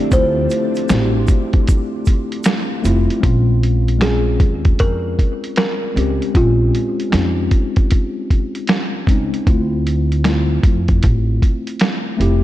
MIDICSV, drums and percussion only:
0, 0, Header, 1, 2, 480
1, 0, Start_track
1, 0, Tempo, 779221
1, 70, Time_signature, 4, 2, 24, 8
1, 7662, End_track
2, 0, Start_track
2, 0, Title_t, "Drums"
2, 72, Note_on_c, 9, 36, 121
2, 72, Note_on_c, 9, 82, 67
2, 73, Note_on_c, 9, 42, 79
2, 133, Note_off_c, 9, 82, 0
2, 134, Note_off_c, 9, 36, 0
2, 135, Note_off_c, 9, 42, 0
2, 309, Note_on_c, 9, 82, 45
2, 317, Note_on_c, 9, 42, 56
2, 371, Note_off_c, 9, 82, 0
2, 379, Note_off_c, 9, 42, 0
2, 463, Note_on_c, 9, 82, 46
2, 473, Note_on_c, 9, 42, 35
2, 525, Note_off_c, 9, 82, 0
2, 535, Note_off_c, 9, 42, 0
2, 548, Note_on_c, 9, 82, 75
2, 551, Note_on_c, 9, 26, 80
2, 554, Note_on_c, 9, 38, 104
2, 559, Note_on_c, 9, 42, 91
2, 609, Note_off_c, 9, 82, 0
2, 613, Note_off_c, 9, 26, 0
2, 616, Note_off_c, 9, 38, 0
2, 621, Note_off_c, 9, 42, 0
2, 783, Note_on_c, 9, 82, 46
2, 791, Note_on_c, 9, 36, 100
2, 792, Note_on_c, 9, 42, 57
2, 845, Note_off_c, 9, 82, 0
2, 852, Note_off_c, 9, 36, 0
2, 853, Note_off_c, 9, 42, 0
2, 944, Note_on_c, 9, 42, 34
2, 947, Note_on_c, 9, 36, 90
2, 1005, Note_off_c, 9, 42, 0
2, 1008, Note_off_c, 9, 36, 0
2, 1031, Note_on_c, 9, 42, 78
2, 1036, Note_on_c, 9, 82, 63
2, 1038, Note_on_c, 9, 36, 86
2, 1093, Note_off_c, 9, 42, 0
2, 1098, Note_off_c, 9, 82, 0
2, 1100, Note_off_c, 9, 36, 0
2, 1266, Note_on_c, 9, 82, 44
2, 1276, Note_on_c, 9, 36, 77
2, 1277, Note_on_c, 9, 42, 67
2, 1327, Note_off_c, 9, 82, 0
2, 1338, Note_off_c, 9, 36, 0
2, 1339, Note_off_c, 9, 42, 0
2, 1429, Note_on_c, 9, 42, 36
2, 1491, Note_off_c, 9, 42, 0
2, 1502, Note_on_c, 9, 82, 72
2, 1505, Note_on_c, 9, 42, 88
2, 1513, Note_on_c, 9, 26, 90
2, 1516, Note_on_c, 9, 38, 105
2, 1564, Note_off_c, 9, 82, 0
2, 1566, Note_off_c, 9, 42, 0
2, 1575, Note_off_c, 9, 26, 0
2, 1578, Note_off_c, 9, 38, 0
2, 1752, Note_on_c, 9, 82, 51
2, 1758, Note_on_c, 9, 42, 68
2, 1814, Note_off_c, 9, 82, 0
2, 1819, Note_off_c, 9, 42, 0
2, 1912, Note_on_c, 9, 42, 36
2, 1973, Note_off_c, 9, 42, 0
2, 1992, Note_on_c, 9, 36, 110
2, 1993, Note_on_c, 9, 42, 72
2, 2053, Note_off_c, 9, 36, 0
2, 2054, Note_off_c, 9, 42, 0
2, 2238, Note_on_c, 9, 42, 56
2, 2300, Note_off_c, 9, 42, 0
2, 2392, Note_on_c, 9, 42, 31
2, 2454, Note_off_c, 9, 42, 0
2, 2469, Note_on_c, 9, 26, 79
2, 2472, Note_on_c, 9, 38, 99
2, 2477, Note_on_c, 9, 42, 80
2, 2531, Note_off_c, 9, 26, 0
2, 2533, Note_off_c, 9, 38, 0
2, 2539, Note_off_c, 9, 42, 0
2, 2710, Note_on_c, 9, 36, 89
2, 2710, Note_on_c, 9, 42, 58
2, 2771, Note_off_c, 9, 36, 0
2, 2772, Note_off_c, 9, 42, 0
2, 2863, Note_on_c, 9, 42, 34
2, 2866, Note_on_c, 9, 36, 91
2, 2925, Note_off_c, 9, 42, 0
2, 2928, Note_off_c, 9, 36, 0
2, 2951, Note_on_c, 9, 42, 78
2, 2958, Note_on_c, 9, 36, 81
2, 3013, Note_off_c, 9, 42, 0
2, 3020, Note_off_c, 9, 36, 0
2, 3196, Note_on_c, 9, 36, 69
2, 3199, Note_on_c, 9, 42, 62
2, 3258, Note_off_c, 9, 36, 0
2, 3260, Note_off_c, 9, 42, 0
2, 3350, Note_on_c, 9, 42, 35
2, 3412, Note_off_c, 9, 42, 0
2, 3426, Note_on_c, 9, 42, 82
2, 3435, Note_on_c, 9, 26, 79
2, 3437, Note_on_c, 9, 38, 102
2, 3487, Note_off_c, 9, 42, 0
2, 3496, Note_off_c, 9, 26, 0
2, 3499, Note_off_c, 9, 38, 0
2, 3679, Note_on_c, 9, 42, 61
2, 3740, Note_off_c, 9, 42, 0
2, 3832, Note_on_c, 9, 42, 33
2, 3894, Note_off_c, 9, 42, 0
2, 3911, Note_on_c, 9, 36, 114
2, 3912, Note_on_c, 9, 42, 74
2, 3973, Note_off_c, 9, 36, 0
2, 3973, Note_off_c, 9, 42, 0
2, 4156, Note_on_c, 9, 42, 53
2, 4218, Note_off_c, 9, 42, 0
2, 4310, Note_on_c, 9, 42, 35
2, 4372, Note_off_c, 9, 42, 0
2, 4388, Note_on_c, 9, 26, 79
2, 4391, Note_on_c, 9, 38, 94
2, 4396, Note_on_c, 9, 42, 81
2, 4450, Note_off_c, 9, 26, 0
2, 4452, Note_off_c, 9, 38, 0
2, 4458, Note_off_c, 9, 42, 0
2, 4628, Note_on_c, 9, 42, 57
2, 4629, Note_on_c, 9, 36, 90
2, 4689, Note_off_c, 9, 42, 0
2, 4691, Note_off_c, 9, 36, 0
2, 4781, Note_on_c, 9, 42, 35
2, 4785, Note_on_c, 9, 36, 90
2, 4843, Note_off_c, 9, 42, 0
2, 4847, Note_off_c, 9, 36, 0
2, 4870, Note_on_c, 9, 42, 78
2, 4877, Note_on_c, 9, 36, 83
2, 4931, Note_off_c, 9, 42, 0
2, 4939, Note_off_c, 9, 36, 0
2, 5115, Note_on_c, 9, 36, 70
2, 5117, Note_on_c, 9, 42, 61
2, 5177, Note_off_c, 9, 36, 0
2, 5179, Note_off_c, 9, 42, 0
2, 5267, Note_on_c, 9, 42, 34
2, 5328, Note_off_c, 9, 42, 0
2, 5343, Note_on_c, 9, 42, 80
2, 5352, Note_on_c, 9, 26, 81
2, 5355, Note_on_c, 9, 38, 107
2, 5405, Note_off_c, 9, 42, 0
2, 5414, Note_off_c, 9, 26, 0
2, 5416, Note_off_c, 9, 38, 0
2, 5588, Note_on_c, 9, 36, 90
2, 5597, Note_on_c, 9, 42, 64
2, 5650, Note_off_c, 9, 36, 0
2, 5659, Note_off_c, 9, 42, 0
2, 5752, Note_on_c, 9, 42, 33
2, 5813, Note_off_c, 9, 42, 0
2, 5832, Note_on_c, 9, 36, 111
2, 5833, Note_on_c, 9, 42, 74
2, 5894, Note_off_c, 9, 36, 0
2, 5895, Note_off_c, 9, 42, 0
2, 6078, Note_on_c, 9, 42, 53
2, 6140, Note_off_c, 9, 42, 0
2, 6233, Note_on_c, 9, 42, 33
2, 6295, Note_off_c, 9, 42, 0
2, 6310, Note_on_c, 9, 26, 77
2, 6313, Note_on_c, 9, 38, 95
2, 6318, Note_on_c, 9, 42, 84
2, 6372, Note_off_c, 9, 26, 0
2, 6374, Note_off_c, 9, 38, 0
2, 6380, Note_off_c, 9, 42, 0
2, 6551, Note_on_c, 9, 36, 95
2, 6551, Note_on_c, 9, 42, 57
2, 6612, Note_off_c, 9, 36, 0
2, 6613, Note_off_c, 9, 42, 0
2, 6703, Note_on_c, 9, 42, 34
2, 6707, Note_on_c, 9, 36, 88
2, 6765, Note_off_c, 9, 42, 0
2, 6768, Note_off_c, 9, 36, 0
2, 6792, Note_on_c, 9, 42, 76
2, 6799, Note_on_c, 9, 36, 85
2, 6854, Note_off_c, 9, 42, 0
2, 6861, Note_off_c, 9, 36, 0
2, 7037, Note_on_c, 9, 36, 75
2, 7039, Note_on_c, 9, 42, 65
2, 7098, Note_off_c, 9, 36, 0
2, 7101, Note_off_c, 9, 42, 0
2, 7189, Note_on_c, 9, 42, 36
2, 7251, Note_off_c, 9, 42, 0
2, 7266, Note_on_c, 9, 42, 79
2, 7275, Note_on_c, 9, 26, 83
2, 7277, Note_on_c, 9, 38, 103
2, 7327, Note_off_c, 9, 42, 0
2, 7336, Note_off_c, 9, 26, 0
2, 7339, Note_off_c, 9, 38, 0
2, 7519, Note_on_c, 9, 42, 66
2, 7581, Note_off_c, 9, 42, 0
2, 7662, End_track
0, 0, End_of_file